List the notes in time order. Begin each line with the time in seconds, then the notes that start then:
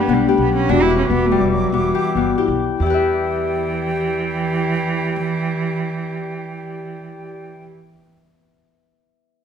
Already playing: G3 D4 G4 A4 B4 F#5 B5
0.01 B3
0.08 B1 B3
0.13 G3
0.28 A3 G4
0.38 B1 B3
0.55 C#4
0.69 E1 B3 D4 F#4 E5 D6
0.82 E4
0.90 B4
0.97 C#4
1.10 E1 B3
1.26 A3
1.31 G3
1.41 E1 G3
1.54 F#3
1.72 E1 E3 B3
1.95 G4
2.15 G1 B3
2.38 E4 G4
2.48 B1
2.80 E2 E3 E4 G4 D5 G5
2.86 G4 B4
2.94 E5